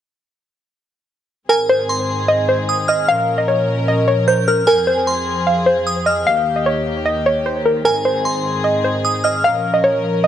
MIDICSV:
0, 0, Header, 1, 4, 480
1, 0, Start_track
1, 0, Key_signature, -4, "major"
1, 0, Tempo, 397351
1, 1806, Time_signature, 4, 2, 24, 8
1, 12410, End_track
2, 0, Start_track
2, 0, Title_t, "Synth bell"
2, 0, Program_c, 0, 98
2, 1805, Note_on_c, 0, 80, 95
2, 2256, Note_off_c, 0, 80, 0
2, 2287, Note_on_c, 0, 84, 84
2, 3198, Note_off_c, 0, 84, 0
2, 3248, Note_on_c, 0, 87, 81
2, 3475, Note_off_c, 0, 87, 0
2, 3481, Note_on_c, 0, 89, 88
2, 3711, Note_off_c, 0, 89, 0
2, 5166, Note_on_c, 0, 91, 95
2, 5394, Note_off_c, 0, 91, 0
2, 5408, Note_on_c, 0, 89, 91
2, 5635, Note_off_c, 0, 89, 0
2, 5641, Note_on_c, 0, 80, 101
2, 6094, Note_off_c, 0, 80, 0
2, 6128, Note_on_c, 0, 84, 82
2, 7038, Note_off_c, 0, 84, 0
2, 7087, Note_on_c, 0, 87, 87
2, 7314, Note_off_c, 0, 87, 0
2, 7325, Note_on_c, 0, 89, 75
2, 7553, Note_off_c, 0, 89, 0
2, 9485, Note_on_c, 0, 80, 95
2, 9937, Note_off_c, 0, 80, 0
2, 9968, Note_on_c, 0, 84, 81
2, 10879, Note_off_c, 0, 84, 0
2, 10928, Note_on_c, 0, 87, 84
2, 11155, Note_off_c, 0, 87, 0
2, 11161, Note_on_c, 0, 89, 91
2, 11391, Note_off_c, 0, 89, 0
2, 12410, End_track
3, 0, Start_track
3, 0, Title_t, "Synth pluck"
3, 0, Program_c, 1, 84
3, 1802, Note_on_c, 1, 70, 100
3, 1996, Note_off_c, 1, 70, 0
3, 2046, Note_on_c, 1, 72, 84
3, 2723, Note_off_c, 1, 72, 0
3, 2759, Note_on_c, 1, 75, 90
3, 2954, Note_off_c, 1, 75, 0
3, 3004, Note_on_c, 1, 72, 77
3, 3456, Note_off_c, 1, 72, 0
3, 3488, Note_on_c, 1, 75, 74
3, 3680, Note_off_c, 1, 75, 0
3, 3726, Note_on_c, 1, 77, 108
3, 4065, Note_off_c, 1, 77, 0
3, 4082, Note_on_c, 1, 75, 73
3, 4179, Note_off_c, 1, 75, 0
3, 4205, Note_on_c, 1, 73, 83
3, 4657, Note_off_c, 1, 73, 0
3, 4689, Note_on_c, 1, 75, 89
3, 4880, Note_off_c, 1, 75, 0
3, 4925, Note_on_c, 1, 73, 81
3, 5118, Note_off_c, 1, 73, 0
3, 5167, Note_on_c, 1, 72, 83
3, 5359, Note_off_c, 1, 72, 0
3, 5410, Note_on_c, 1, 70, 80
3, 5601, Note_off_c, 1, 70, 0
3, 5646, Note_on_c, 1, 70, 98
3, 5839, Note_off_c, 1, 70, 0
3, 5884, Note_on_c, 1, 72, 83
3, 6562, Note_off_c, 1, 72, 0
3, 6605, Note_on_c, 1, 77, 91
3, 6798, Note_off_c, 1, 77, 0
3, 6840, Note_on_c, 1, 72, 75
3, 7294, Note_off_c, 1, 72, 0
3, 7321, Note_on_c, 1, 75, 82
3, 7515, Note_off_c, 1, 75, 0
3, 7570, Note_on_c, 1, 77, 105
3, 7906, Note_off_c, 1, 77, 0
3, 7924, Note_on_c, 1, 75, 71
3, 8021, Note_off_c, 1, 75, 0
3, 8047, Note_on_c, 1, 73, 87
3, 8498, Note_off_c, 1, 73, 0
3, 8523, Note_on_c, 1, 75, 91
3, 8716, Note_off_c, 1, 75, 0
3, 8772, Note_on_c, 1, 73, 84
3, 8962, Note_off_c, 1, 73, 0
3, 9010, Note_on_c, 1, 72, 87
3, 9201, Note_off_c, 1, 72, 0
3, 9247, Note_on_c, 1, 70, 78
3, 9439, Note_off_c, 1, 70, 0
3, 9481, Note_on_c, 1, 70, 98
3, 9675, Note_off_c, 1, 70, 0
3, 9726, Note_on_c, 1, 72, 82
3, 10403, Note_off_c, 1, 72, 0
3, 10438, Note_on_c, 1, 75, 86
3, 10634, Note_off_c, 1, 75, 0
3, 10684, Note_on_c, 1, 72, 78
3, 11136, Note_off_c, 1, 72, 0
3, 11168, Note_on_c, 1, 75, 80
3, 11360, Note_off_c, 1, 75, 0
3, 11407, Note_on_c, 1, 77, 107
3, 11745, Note_off_c, 1, 77, 0
3, 11761, Note_on_c, 1, 75, 73
3, 11859, Note_off_c, 1, 75, 0
3, 11884, Note_on_c, 1, 73, 81
3, 12336, Note_off_c, 1, 73, 0
3, 12368, Note_on_c, 1, 75, 89
3, 12410, Note_off_c, 1, 75, 0
3, 12410, End_track
4, 0, Start_track
4, 0, Title_t, "String section"
4, 0, Program_c, 2, 48
4, 1806, Note_on_c, 2, 44, 77
4, 1806, Note_on_c, 2, 51, 70
4, 1806, Note_on_c, 2, 60, 70
4, 1806, Note_on_c, 2, 68, 86
4, 3707, Note_off_c, 2, 44, 0
4, 3707, Note_off_c, 2, 51, 0
4, 3707, Note_off_c, 2, 60, 0
4, 3707, Note_off_c, 2, 68, 0
4, 3725, Note_on_c, 2, 46, 80
4, 3725, Note_on_c, 2, 61, 72
4, 3726, Note_on_c, 2, 53, 71
4, 3726, Note_on_c, 2, 70, 88
4, 5626, Note_off_c, 2, 46, 0
4, 5626, Note_off_c, 2, 61, 0
4, 5627, Note_off_c, 2, 53, 0
4, 5627, Note_off_c, 2, 70, 0
4, 5646, Note_on_c, 2, 41, 77
4, 5646, Note_on_c, 2, 53, 71
4, 5646, Note_on_c, 2, 60, 72
4, 5646, Note_on_c, 2, 68, 89
4, 7547, Note_off_c, 2, 41, 0
4, 7547, Note_off_c, 2, 53, 0
4, 7547, Note_off_c, 2, 60, 0
4, 7547, Note_off_c, 2, 68, 0
4, 7566, Note_on_c, 2, 39, 77
4, 7566, Note_on_c, 2, 51, 71
4, 7566, Note_on_c, 2, 58, 69
4, 7566, Note_on_c, 2, 67, 87
4, 9466, Note_off_c, 2, 67, 0
4, 9467, Note_off_c, 2, 39, 0
4, 9467, Note_off_c, 2, 58, 0
4, 9485, Note_on_c, 2, 44, 76
4, 9485, Note_on_c, 2, 68, 88
4, 9486, Note_on_c, 2, 60, 72
4, 11368, Note_off_c, 2, 51, 0
4, 11386, Note_off_c, 2, 44, 0
4, 11386, Note_off_c, 2, 60, 0
4, 11386, Note_off_c, 2, 68, 0
4, 11406, Note_on_c, 2, 46, 76
4, 11406, Note_on_c, 2, 53, 71
4, 11406, Note_on_c, 2, 61, 70
4, 11406, Note_on_c, 2, 70, 85
4, 12410, Note_off_c, 2, 46, 0
4, 12410, Note_off_c, 2, 53, 0
4, 12410, Note_off_c, 2, 61, 0
4, 12410, Note_off_c, 2, 70, 0
4, 12410, End_track
0, 0, End_of_file